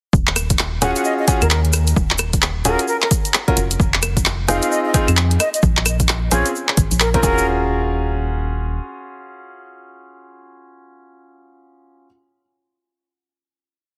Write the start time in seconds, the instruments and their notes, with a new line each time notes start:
0.13 fm bass D#1, kick, shaker
0.27 clap
0.36 cross-stick, closed hi-hat, claves, shaker
0.50 kick, closed hi-hat, shaker
0.59 clap, shaker
0.82 fm bass D#1, grand piano C#4 F4 F#4 G#4, flute F#5, cross-stick, closed hi-hat, shaker
0.96 flute F#5, closed hi-hat, shaker
1.05 flute D#5, shaker
1.19 flute D#5
1.28 grand piano C#4 F4 F#4 G#4, kick, closed hi-hat, shaker
1.42 fm bass D#2, flute A#4, closed hi-hat, claves, shaker
1.50 flute A#4, clap, shaker
1.65 closed hi-hat
1.73 cross-stick, closed hi-hat, claves, shaker
1.87 closed hi-hat, shaker
1.96 fm bass D#1, kick, shaker
2.11 clap
2.18 cross-stick, closed hi-hat, claves, shaker
2.33 kick, closed hi-hat, shaker
2.42 clap, shaker
2.65 fm bass D#1, grand piano C#4 F4 F#4 G#4, flute A#4, closed hi-hat, shaker
2.79 closed hi-hat, shaker
2.88 flute A#4, shaker
3.02 flute A#4, clap
3.11 kick, closed hi-hat, shaker
3.25 closed hi-hat, shaker
3.34 clap, shaker
3.48 grand piano C#4 F4 F#4 A#4, kick, closed hi-hat
3.57 fm bass F1, closed hi-hat, shaker
3.71 closed hi-hat, shaker
3.80 fm bass F1, kick, shaker
3.94 clap
4.02 cross-stick, closed hi-hat, claves, shaker
4.17 kick, closed hi-hat, shaker
4.26 clap, shaker
4.48 fm bass F1, grand piano C4 D#4 F4 G#4, flute F5, cross-stick, closed hi-hat, shaker
4.62 flute F5, closed hi-hat, shaker
4.71 flute D#5, shaker
4.85 flute D#5
4.94 grand piano C4 D#4 F4 G#4, kick, closed hi-hat, shaker
5.08 fm bass F2, closed hi-hat, claves, shaker
5.17 clap, shaker
5.31 closed hi-hat
5.40 flute D#5, cross-stick, closed hi-hat, claves, shaker
5.54 flute D#5, closed hi-hat, shaker
5.62 fm bass A#1, kick, shaker
5.77 clap
5.86 cross-stick, closed hi-hat, claves, shaker
6.00 kick, closed hi-hat, shaker
6.09 clap, shaker
6.31 fm bass A#1, grand piano C4 C#4 F4 G#4, flute C#5, closed hi-hat, shaker
6.46 closed hi-hat, shaker
6.55 shaker
6.69 clap
6.77 fm bass G#1, kick, closed hi-hat, shaker
6.91 fm bass A#1, closed hi-hat, shaker
7.00 flute A#4, clap, shaker
7.14 grand piano C4 C#4 F4 A#4, flute A#4, kick, closed hi-hat
7.23 fm bass D#1, grand piano C#4 F4 F#4 G#4, flute A#4, kick, shaker
7.38 shaker